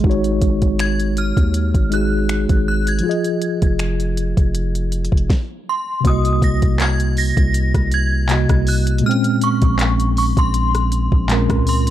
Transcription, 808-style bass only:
0.04 0.40 G#1 loud
0.42 1.33 G#1 loud
1.37 1.73 D#2 loud
1.74 2.46 G#1 medium
2.50 3.02 G#1 loud
3.62 4.34 F1 loud
4.37 5.09 F1 loud
5.12 5.29 F1 loud
6.05 6.41 C2 loud
6.42 7.33 C2 loud
7.37 7.73 C2 loud
7.74 8.46 C2 loud
8.50 9.02 C2 loud
9.62 10.34 A#1 loud
10.37 11.09 A#1 loud
11.12 11.48 A#1 loud
11.50 11.90 C#2 loud

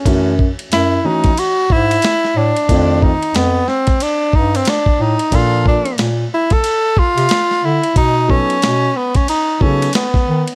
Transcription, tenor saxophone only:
0.73 1.08 E4 loud
1.06 1.41 D#4 loud
1.39 1.73 F#4 loud
1.72 2.39 E4 loud
2.38 3.04 D4 medium
3.03 3.37 D#4 medium
3.36 3.70 B3 medium
3.69 4.04 C4 medium
4.02 4.37 D4 medium
4.35 4.58 D#4 medium
4.56 4.71 C4 medium
4.69 5.03 D4 medium
5.02 5.36 D#4 medium
5.35 5.67 F4 medium
5.68 5.98 D4 medium
6.34 6.54 E4 medium
6.53 7.00 A4 loud
6.99 7.66 F4 loud
7.65 7.97 E4 medium
7.97 8.32 D#4 loud
8.31 8.98 C#4 loud
8.97 9.17 B3 medium
9.16 9.29 C#4 medium
9.29 9.64 D#4 medium
9.62 9.95 C#4 medium
9.95 10.55 B3 medium

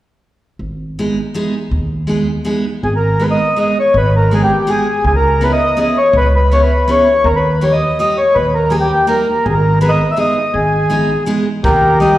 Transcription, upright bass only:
0.59 1.08 G#1 medium
1.71 2.19 D#2 medium
2.83 3.32 G#1 medium
3.94 4.42 G#1 loud
5.04 5.52 C#2 medium
6.13 6.62 C#2 medium
7.24 7.73 D#2 medium
8.36 8.83 D#2 medium
9.46 9.93 G#1 medium
10.54 11.02 G#1 medium
11.65 12.12 D#2 medium

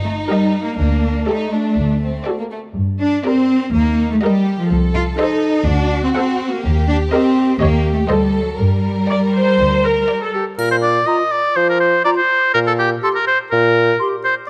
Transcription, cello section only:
0.05 0.13 A3 medium
0.29 0.61 G3 medium
0.62 0.77 A#3 medium
0.78 1.27 A#3 medium
1.28 2.27 A3 soft
3.01 3.23 D4 medium
3.25 3.73 C4 medium
3.74 4.10 A#3 medium
4.11 4.16 A3 medium
4.23 4.58 G3 medium
4.59 4.71 F3 soft
4.95 5.03 F4 medium
5.19 5.65 D#4 medium
5.67 6.03 D4 medium
6.04 6.08 C4 medium
6.15 6.51 C4 medium
6.51 6.87 A#3 medium
6.88 6.96 D4 medium
7.12 7.59 C4 medium
7.59 7.91 A#3 medium
7.93 7.99 A3 medium
8.09 8.41 G3 medium
8.42 8.59 F#3 soft
8.59 10.34 G3 soft

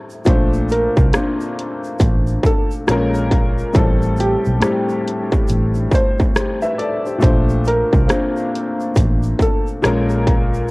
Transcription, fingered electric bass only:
0.27 0.87 A#1 loud
0.98 1.11 C2 medium
2.00 2.37 A1 medium
2.89 3.62 A#1 medium
3.75 4.35 A1 loud
4.47 4.60 B1 medium
5.50 5.86 A1 medium
7.23 7.83 A#1 loud
7.94 8.07 C2 medium
8.96 9.33 A1 medium
9.85 10.71 A#1 loud

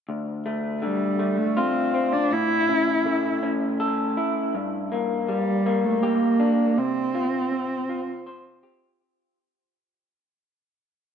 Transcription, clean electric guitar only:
0.09 1.95 D2 soft
0.46 1.19 A3 soft
0.82 2.31 D3 soft
1.19 2.68 A3 soft
1.57 2.31 F4 soft
1.94 2.32 C4 soft
2.31 4.17 A2 soft
2.69 3.42 C#4 soft
3.06 4.54 A3 soft
3.43 4.54 C#4 soft
3.80 4.54 A4 soft
4.17 4.54 E4 soft
4.55 6.40 G2 soft
4.92 5.65 A#3 soft
5.29 7.18 G3 soft
5.66 6.77 A#3 soft
6.03 7.18 G4 medium
6.40 6.77 D4 soft
6.78 8.63 C3 soft
7.15 7.88 F4 soft
7.52 9.00 C4 soft
7.89 9.00 F4 soft
8.27 9.01 C5 soft
8.63 9.00 G4 soft

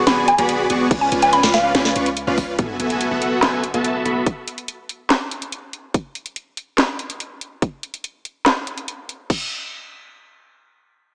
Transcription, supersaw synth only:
0.07 0.27 B3 medium
0.07 0.27 F#4 medium
0.07 0.27 G#4 medium
0.07 0.27 D5 medium
0.07 0.27 G#5 loud
0.38 0.67 B3 medium
0.38 0.67 F#4 medium
0.38 0.67 G#4 medium
0.38 0.67 D5 medium
0.38 0.67 B5 medium
0.70 0.88 B3 loud
0.70 0.88 F#4 medium
0.70 0.88 G#4 medium
0.70 0.88 D5 medium
0.70 0.88 C#6 loud
0.91 1.09 C#4 loud
0.91 1.09 F4 medium
0.91 1.09 D5 medium
0.91 1.09 G#5 loud
1.12 1.41 C#4 medium
1.12 1.41 F4 medium
1.12 1.41 B4 medium
1.12 1.41 D5 medium
1.12 1.41 G#5 medium
1.43 1.72 C#4 medium
1.43 1.72 F4 medium
1.43 1.72 B4 medium
1.43 1.72 D5 medium
1.43 1.72 F5 medium
1.75 1.94 C#4 medium
1.75 1.94 F4 medium
1.75 1.94 B4 medium
1.75 1.94 D5 medium
1.75 1.94 G#5 loud
1.96 2.08 C#4 medium
1.96 2.08 F4 medium
1.96 2.09 B4 medium
1.96 2.08 D5 medium
1.96 2.08 C#6 medium
2.27 2.56 C#4 medium
2.27 2.56 F4 medium
2.27 2.56 B4 medium
2.27 2.56 D5 medium
2.27 2.56 F5 medium
2.58 2.77 B3 medium
2.58 2.77 F#4 medium
2.58 2.77 A4 medium
2.58 2.77 E5 medium
2.58 2.77 G#5 loud
2.80 3.09 B3 medium
2.80 3.09 F#4 medium
2.80 3.09 A4 medium
2.80 3.09 E5 medium
2.80 3.09 G#5 medium
3.11 3.40 B3 medium
3.11 3.40 F#4 medium
3.11 3.40 A4 medium
3.11 3.40 E5 medium
3.11 3.40 F#5 medium
3.42 3.63 B3 medium
3.42 3.63 F#4 medium
3.42 3.63 A4 medium
3.42 3.63 E5 medium
3.42 3.63 G#5 loud
3.74 4.03 B3 medium
3.74 4.03 F#4 medium
3.74 4.03 A4 medium
3.74 4.03 E5 medium
3.74 4.03 A5 medium
4.05 4.24 B3 medium
4.05 4.24 F#4 medium
4.05 4.24 A4 medium
4.05 4.24 E5 medium
4.05 4.24 B5 loud

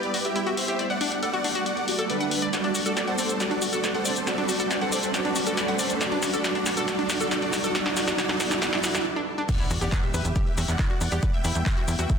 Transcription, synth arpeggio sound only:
0.14 0.18 F#4 medium
0.36 0.46 E4 medium
0.46 0.51 F#4 loud
0.68 0.78 G4 loud
0.79 0.83 D5 loud
0.90 0.94 F#5 medium
1.01 1.11 D4 loud
1.23 1.33 A4 medium
1.33 1.37 F#4 medium
1.44 1.48 D4 medium
1.55 1.65 F#4 loud
1.99 2.05 A4 loud
2.10 2.20 D5 medium
2.20 2.24 F#5 loud
2.42 2.49 D5 loud
2.64 2.68 D4 medium
2.75 2.79 F#4 medium
2.86 2.92 A4 medium
2.97 3.07 D5 medium
3.07 3.17 F#5 medium
3.18 3.28 D5 medium
3.51 3.55 D4 medium
3.62 3.66 F#4 medium
3.73 3.79 A4 loud
3.84 3.94 D5 medium
3.94 4.04 F#5 medium
4.05 4.15 D5 loud
4.38 4.42 D4 medium
4.49 4.53 F#4 medium
4.60 4.66 A4 medium
4.70 4.80 D5 medium
4.81 4.91 F#5 medium
4.92 5.02 D5 loud
5.25 5.29 D4 medium
5.36 5.40 F#4 medium
5.47 5.53 A4 loud
5.57 5.67 D5 medium
5.68 5.78 F#5 medium
5.79 5.89 D5 loud
6.12 6.16 D4 medium
6.23 6.27 F#4 medium
6.34 6.40 A4 loud
6.55 6.59 D4 medium
6.66 6.70 F#4 medium
6.77 6.84 A4 loud
6.99 7.03 D4 medium
7.10 7.14 F#4 medium
7.21 7.27 A4 loud
7.42 7.46 D4 medium
7.53 7.57 F#4 medium
7.64 7.71 A4 loud
7.86 7.90 D4 medium
8.07 8.11 D4 medium
8.29 8.33 D4 medium
8.51 8.55 D4 medium
8.73 8.77 D4 medium
8.94 8.98 D4 medium
9.16 9.20 D4 medium
9.38 9.42 D4 medium
9.60 9.64 E4 medium
9.70 9.74 F#4 medium
9.81 9.88 G4 loud
9.92 10.02 B4 medium
10.03 10.13 E5 medium
10.14 10.24 B4 loud
10.36 10.40 G4 loud
10.57 10.61 F#4 medium
10.79 10.89 E4 medium
10.90 10.94 F#4 loud
11.12 11.22 G4 loud
11.23 11.27 B4 loud
11.34 11.38 E5 medium
11.44 11.54 E4 loud
11.66 11.76 G4 medium
11.77 11.81 F#4 loud
11.88 11.92 E4 medium
11.99 12.09 F#4 loud

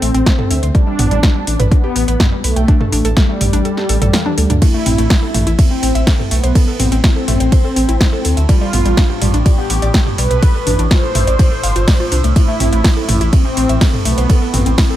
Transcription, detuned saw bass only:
0.02 0.10 A1 loud
0.14 0.22 A1 medium
0.51 0.58 D2 loud
0.63 0.70 D2 medium
0.99 1.07 A1 loud
1.11 1.19 A1 medium
1.47 1.55 A1 medium
1.60 1.67 A1 medium
1.96 2.04 A1 loud
2.08 2.16 A1 medium
2.44 2.52 B1 medium
2.56 2.64 B1 medium
2.93 3.00 A1 loud
3.05 3.12 A1 medium
3.41 3.49 A1 loud
3.53 3.61 A1 medium
3.89 3.97 A1 medium
4.02 4.09 A1 medium
4.38 4.46 D2 loud
4.50 4.58 D2 medium
4.86 4.94 A1 loud
4.98 5.06 A1 medium
5.35 5.42 A1 medium
5.47 5.54 A1 medium
5.83 5.91 A1 medium
5.95 6.03 A1 medium
6.31 6.39 B1 loud
6.44 6.51 B1 medium
6.80 6.87 A1 loud
6.92 7.00 A1 medium
7.28 7.36 A1 loud
7.40 7.48 A1 medium
7.76 7.84 A1 loud
7.89 7.96 A1 medium
8.25 8.33 D2 loud
8.37 8.45 D2 medium
8.73 8.81 A1 loud
8.86 8.93 A1 medium
9.22 9.29 A1 loud
9.34 9.41 A1 medium
9.70 9.78 A1 medium
9.82 9.90 A1 medium
10.18 10.26 B1 medium
10.31 10.38 B1 medium
10.67 10.75 A1 loud
10.79 10.87 A1 medium
11.15 11.23 A1 loud
11.27 11.35 A1 medium
11.63 11.71 G1 medium
11.76 11.83 G1 medium
12.12 12.20 C2 medium
12.24 12.32 C2 medium
12.60 12.68 A1 loud
12.73 12.80 A1 medium
13.09 13.17 A1 loud
13.21 13.29 A1 medium
13.57 13.65 A1 medium
13.69 13.77 A1 medium
14.05 14.13 B1 medium
14.18 14.25 B1 medium
14.54 14.62 A1 loud
14.66 14.74 A1 medium

